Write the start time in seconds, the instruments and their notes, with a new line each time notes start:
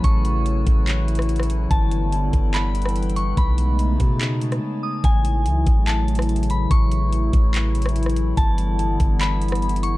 Already playing: analog synth pad C#3 E3 F#3 A3 E4, synth texture C#4 A4 F#5
0.04 808-style bass A1, synth bell C#6, kick, closed hi-hat
0.25 closed hi-hat
0.46 closed hi-hat
0.67 808-style bass A1, kick, closed hi-hat
0.88 clap, closed hi-hat
1.08 closed hi-hat
1.15 cross-stick, closed hi-hat
1.22 closed hi-hat
1.29 closed hi-hat
1.36 cross-stick, closed hi-hat
1.43 closed hi-hat
1.50 closed hi-hat
1.71 808-style bass G1, analog synth pad D3 G3 B3, synth texture E4 B4 G5, synth bell A5, kick, closed hi-hat
1.91 closed hi-hat
2.12 closed hi-hat
2.33 808-style bass G1, kick, closed hi-hat
2.54 synth bell B5, clap, closed hi-hat
2.75 closed hi-hat
2.82 cross-stick, closed hi-hat
2.89 closed hi-hat
2.96 closed hi-hat
3.03 closed hi-hat
3.10 closed hi-hat
3.16 synth bell C#6, closed hi-hat
3.37 808-style bass B1, analog synth pad C#3 G#3 A3 D#4, synth texture D#4 C#5 G#5 A5, synth bell B5, kick, closed hi-hat
3.58 closed hi-hat
3.79 closed hi-hat
4.00 808-style bass B2, kick, closed hi-hat
4.21 clap, closed hi-hat
4.41 closed hi-hat
4.52 cross-stick, closed hi-hat
4.83 synth bell D#6
5.04 808-style bass A1, analog synth pad C#3 E3 F#3 A3 E4, synth bell G#5, kick, closed hi-hat
5.25 closed hi-hat
5.46 808-style bass C#2, closed hi-hat
5.67 808-style bass A1, kick, closed hi-hat
5.87 synth bell A5, clap, closed hi-hat
6.08 closed hi-hat
6.15 cross-stick, closed hi-hat
6.22 closed hi-hat
6.29 closed hi-hat
6.36 closed hi-hat
6.43 closed hi-hat
6.50 synth bell B5, closed hi-hat
6.71 808-style bass A1, synth bell C#6, kick, closed hi-hat
6.91 closed hi-hat
7.12 closed hi-hat
7.33 808-style bass A1, kick, closed hi-hat
7.54 clap, closed hi-hat
7.75 closed hi-hat
7.82 cross-stick, closed hi-hat
7.89 closed hi-hat
7.96 closed hi-hat
8.03 cross-stick, closed hi-hat
8.10 closed hi-hat
8.16 closed hi-hat
8.37 808-style bass G1, analog synth pad D3 G3 B3, synth bell A5, kick, closed hi-hat
8.58 closed hi-hat
8.79 closed hi-hat
9.00 808-style bass G1, kick, closed hi-hat
9.21 synth bell B5, clap, closed hi-hat
9.42 closed hi-hat
9.48 cross-stick, closed hi-hat
9.55 closed hi-hat
9.62 closed hi-hat
9.69 closed hi-hat
9.76 closed hi-hat
9.83 synth bell C#6, closed hi-hat